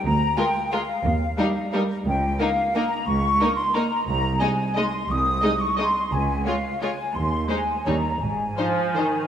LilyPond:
<<
  \new Staff \with { instrumentName = "Flute section" } { \time 3/4 \key aes \major \tempo 4 = 174 bes''4 g''4 f''4~ | f''2~ f''8 r8 | g''4 f''4 bes''4 | des'''4. c'''8 bes''4 |
bes''4 aes''4 c'''4 | ees'''4. des'''8 c'''4 | aes''4 f''4 aes''4 | c'''4 aes''4 bes''4 |
aes''2. | }
  \new Staff \with { instrumentName = "Violin section" } { \time 3/4 \key aes \major r4 bes'4 bes'4 | r4 bes'4 bes'4 | r4 bes'4 bes'4 | r4 bes'4 bes'4 |
r4 ees''4 ees''4 | r4 ees''4 ees''4 | r4 des''4 des''4 | r4 c''4 des''4 |
r4 c''4 c''4 | }
  \new Staff \with { instrumentName = "Violin section" } { \time 3/4 \key aes \major r4 f'4 f'4 | r4 ees'4 ees'4 | r4 ees'4 ees'4 | r4 ees'4 ees'4 |
r4 ees'4 ees'4 | r4 ees'4 ees'4 | r4 f'4 f'4 | r4 ees'4 ees'4 |
r4 ees'4 ees'4 | }
  \new Staff \with { instrumentName = "Viola section" } { \clef bass \time 3/4 \key aes \major r4 aes4 aes4 | r4 g4 g4 | r4 bes4 bes4 | r4 bes4 bes4 |
r4 aes4 aes4 | r4 aes4 aes4 | r4 aes4 aes4 | r4 aes4 g4 |
r4 f4 ees4 | }
  \new Staff \with { instrumentName = "Cello section" } { \clef bass \time 3/4 \key aes \major d,4 r2 | ees,4 r2 | des,4 r2 | des,4 r2 |
c,4 r2 | c,4 r2 | des,4 r2 | ees,4 r4 ees,4 |
aes,4 r2 | }
  \new Staff \with { instrumentName = "Double bass section" } { \clef bass \time 3/4 \key aes \major d,4 r2 | ees,4 r2 | des,4 r2 | des,4 r2 |
c,4 r2 | c,4 r2 | des,4 r2 | ees,4 r4 ees,4 |
aes,,4 r2 | }
>>